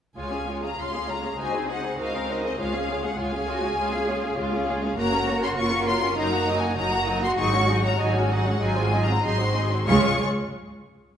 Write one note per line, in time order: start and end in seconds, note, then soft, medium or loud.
0.17 0.71 C#2 medium
0.17 0.31 G#3 soft
0.17 0.31 F4 soft
0.17 0.31 C#5 soft
0.17 0.60 G#5 medium
0.32 0.47 C#4 soft
0.32 0.47 G#4 soft
0.32 0.48 G#4 soft
0.32 0.48 F5 soft
0.46 0.62 G#3 soft
0.46 0.62 F4 soft
0.46 0.63 F4 soft
0.46 0.63 C#5 soft
0.62 0.78 C#4 soft
0.62 0.78 G#4 soft
0.62 0.78 F5 soft
0.62 0.79 A#5 medium
0.77 1.31 C#2 soft
0.77 0.92 G#3 soft
0.77 0.91 F4 soft
0.77 0.92 F4 soft
0.77 0.93 C#5 soft
0.77 1.09 C6 medium
0.92 1.08 C#4 soft
0.92 1.08 G#4 soft
0.92 1.08 F5 soft
1.07 1.23 G#3 soft
1.07 1.23 F4 soft
1.07 1.24 C#5 soft
1.07 1.39 A#5 medium
1.23 1.38 C#4 soft
1.23 1.38 G#4 soft
1.23 1.39 F5 soft
1.38 1.91 C#2 soft
1.38 1.51 D#4 soft
1.38 1.52 F#4 soft
1.38 1.95 G#4 medium
1.38 1.53 C5 soft
1.38 1.53 D#5 soft
1.38 1.68 G#5 medium
1.52 1.68 C4 soft
1.52 1.66 D#4 soft
1.52 1.69 G#4 soft
1.52 1.68 C5 soft
1.67 1.82 D#4 soft
1.67 1.83 F#4 soft
1.67 1.82 C5 soft
1.67 1.84 D#5 soft
1.67 1.99 F#5 medium
1.82 1.98 C4 soft
1.82 1.97 D#4 soft
1.82 1.99 G#4 soft
1.82 1.97 C5 soft
1.98 2.52 C#2 medium
1.98 2.12 D#4 soft
1.98 2.12 F#4 soft
1.98 2.58 A#4 medium
1.98 2.12 C5 soft
1.98 2.13 D#5 soft
1.98 2.44 F5 medium
2.13 2.29 C4 soft
2.13 2.27 D#4 soft
2.13 2.29 G#4 soft
2.13 2.27 C5 soft
2.28 2.42 D#4 soft
2.28 2.44 F#4 soft
2.28 2.43 C5 soft
2.28 2.44 D#5 soft
2.43 2.59 C4 soft
2.43 2.59 D#4 soft
2.43 2.59 G#4 soft
2.43 2.59 C5 soft
2.43 2.59 D#5 medium
2.58 3.12 C#2 medium
2.58 2.73 G#3 soft
2.58 2.72 F4 soft
2.58 2.73 F4 soft
2.58 3.17 G#4 medium
2.58 2.73 C#5 soft
2.58 3.03 F5 medium
2.73 2.88 C#4 soft
2.73 2.88 G#4 soft
2.73 2.89 G#4 soft
2.73 2.89 F5 soft
2.88 3.03 G#3 soft
2.88 3.04 F4 soft
2.88 3.04 C#5 soft
3.03 3.18 C#4 soft
3.03 3.18 G#4 soft
3.03 3.19 G#4 soft
3.03 3.19 F5 soft
3.03 3.19 F#5 medium
3.18 3.71 C#2 medium
3.18 3.32 G#3 soft
3.18 3.32 F4 soft
3.18 3.33 F4 soft
3.18 3.27 F4 medium
3.18 3.33 C#5 soft
3.18 4.68 G#5 medium
3.33 3.48 C#4 soft
3.33 3.48 G#4 soft
3.33 3.49 G#4 soft
3.33 3.49 F5 medium
3.47 3.63 G#3 soft
3.47 3.63 F4 soft
3.47 3.64 F4 soft
3.47 3.78 F#4 medium
3.47 3.64 C#5 soft
3.63 3.78 C#4 soft
3.63 3.78 G#4 medium
3.63 3.79 G#4 soft
3.63 3.79 F5 soft
3.78 4.31 C#2 medium
3.78 3.92 G#3 medium
3.78 3.92 F4 medium
3.78 3.93 F4 medium
3.78 4.37 G#4 medium
3.78 3.93 C#5 medium
3.92 4.08 C#4 medium
3.92 4.08 G#4 medium
3.92 4.08 G#4 soft
3.92 4.08 F5 soft
4.08 4.23 G#3 soft
4.08 4.23 F4 medium
4.08 4.23 F4 soft
4.08 4.23 C#5 soft
4.23 4.38 C#4 medium
4.23 4.38 G#4 medium
4.23 4.38 F5 medium
4.38 4.91 C#2 medium
4.38 4.52 G#3 medium
4.38 4.52 F4 medium
4.38 4.68 F4 medium
4.38 4.52 C#5 medium
4.53 4.68 C#4 medium
4.53 4.68 G#4 medium
4.53 4.68 F5 medium
4.68 4.83 G#3 medium
4.68 4.83 F4 medium
4.68 4.84 F4 medium
4.68 4.76 G#4 medium
4.68 4.84 C#5 medium
4.83 4.98 C#4 medium
4.83 4.98 G#4 medium
4.83 4.99 G#4 medium
4.83 4.98 F5 medium
4.98 5.51 F#1 medium
4.98 5.12 A#3 medium
4.98 5.12 F#4 medium
4.98 5.57 F#4 medium
4.98 5.12 A#4 medium
4.98 5.13 C#5 medium
4.98 5.40 A#5 loud
5.13 5.28 C#4 medium
5.13 5.28 F#4 medium
5.13 5.28 A#4 medium
5.27 5.42 A#3 medium
5.27 5.43 F#4 medium
5.27 5.43 A#4 medium
5.27 5.43 C#5 medium
5.42 5.57 C#4 medium
5.42 5.58 F#4 medium
5.42 5.57 A#4 medium
5.42 5.49 C6 medium
5.57 6.10 F#1 medium
5.57 5.71 A#3 medium
5.57 6.18 F4 medium
5.57 5.71 F#4 medium
5.57 5.70 A#4 medium
5.57 5.72 C#5 medium
5.57 5.87 C#6 loud
5.72 5.87 C#4 medium
5.72 5.87 F#4 medium
5.72 5.87 A#4 medium
5.72 5.86 A#4 medium
5.87 6.02 A#3 medium
5.87 6.03 F#4 medium
5.87 6.00 A#4 medium
5.87 6.02 C#5 medium
5.87 6.17 C6 medium
6.02 6.17 C#4 medium
6.02 6.17 F#4 medium
6.02 6.16 A#4 medium
6.02 6.17 A#4 medium
6.17 6.70 F#1 medium
6.17 6.31 F#3 medium
6.17 6.31 D#4 medium
6.17 6.78 D#4 medium
6.17 6.31 A#4 medium
6.17 6.31 D#5 medium
6.17 6.56 A#5 loud
6.32 6.48 A#3 medium
6.32 6.47 F#4 medium
6.32 6.48 F#4 medium
6.32 6.47 F#5 medium
6.47 6.63 F#3 medium
6.47 6.63 D#4 medium
6.47 6.62 A#4 medium
6.47 6.62 D#5 medium
6.58 6.77 F#4 medium
6.58 6.77 F#5 medium
6.58 6.78 G#5 medium
6.62 6.77 A#3 medium
6.62 6.78 F#4 medium
6.77 7.31 F#1 medium
6.77 6.91 F#3 medium
6.77 6.91 D#4 medium
6.77 8.61 F#4 medium
6.77 6.91 A#4 medium
6.77 6.91 D#5 medium
6.77 7.22 A#5 loud
6.92 7.08 A#3 medium
6.92 7.07 F#4 medium
6.92 7.08 F#4 medium
6.92 7.07 F#5 medium
7.07 7.23 F#3 medium
7.07 7.23 D#4 medium
7.07 7.23 A#4 medium
7.07 7.23 D#5 medium
7.22 7.38 A#3 medium
7.22 7.38 F#4 medium
7.22 7.38 F#5 medium
7.22 7.29 C6 medium
7.38 7.92 G#1 medium
7.38 7.52 F#3 medium
7.38 7.52 D#4 medium
7.38 7.52 G#4 medium
7.38 7.52 D#5 medium
7.38 7.83 C#6 loud
7.53 7.69 G#3 medium
7.53 7.69 C#4 medium
7.53 7.69 F#4 medium
7.53 7.69 C#5 medium
7.68 7.84 F#3 medium
7.68 7.84 D#4 medium
7.68 7.84 G#4 medium
7.68 7.84 D#5 medium
7.83 8.00 G#3 medium
7.83 8.00 C#4 medium
7.83 7.99 F#4 medium
7.83 7.99 C#5 medium
7.83 8.00 A#5 medium
7.99 8.54 G#1 medium
7.99 8.14 F#3 medium
7.99 8.14 D#4 medium
7.99 8.13 G#4 medium
7.99 8.13 D#5 medium
7.99 8.30 G#5 medium
8.13 8.30 G#3 medium
8.13 8.30 C#4 medium
8.13 8.30 F#4 medium
8.13 8.30 C#5 medium
8.30 8.46 F#3 medium
8.30 8.46 D#4 medium
8.30 8.46 G#4 medium
8.30 8.46 D#5 medium
8.30 8.61 F#5 medium
8.45 8.61 G#3 medium
8.45 8.61 C#4 medium
8.45 8.61 F#4 medium
8.45 8.61 C#5 medium
8.61 9.16 G#1 medium
8.61 8.76 F#3 medium
8.61 8.76 D#4 medium
8.61 9.23 F4 medium
8.61 8.75 G#4 medium
8.61 8.75 D#5 medium
8.61 9.03 G#5 medium
8.76 8.93 G#3 medium
8.76 8.92 C4 medium
8.76 8.92 F#4 medium
8.76 8.92 C5 medium
8.92 9.08 F#3 medium
8.92 9.08 D#4 medium
8.92 9.08 G#4 medium
8.92 9.08 D#5 medium
9.04 9.24 G#3 medium
9.04 9.24 C4 medium
9.04 9.24 A#5 medium
9.08 9.24 F#4 medium
9.08 9.24 C5 medium
9.23 9.80 G#1 medium
9.23 9.38 F#3 medium
9.23 9.38 D#4 medium
9.23 9.55 D#4 medium
9.23 9.38 G#4 medium
9.23 9.38 D#5 medium
9.23 9.87 C6 medium
9.39 9.55 G#3 medium
9.39 9.55 C4 medium
9.39 9.56 F#4 medium
9.39 9.56 C5 medium
9.55 9.72 F#3 soft
9.55 9.71 D#4 soft
9.55 9.72 G#4 medium
9.55 9.72 D#5 medium
9.71 9.86 G#3 medium
9.71 9.87 C4 medium
9.71 9.88 F#4 medium
9.71 9.87 C5 medium
9.87 10.23 C#2 medium
9.87 10.22 G#3 medium
9.87 10.22 F4 medium
9.87 10.22 G#4 medium
9.87 10.22 C#5 medium
9.87 10.23 C#6 loud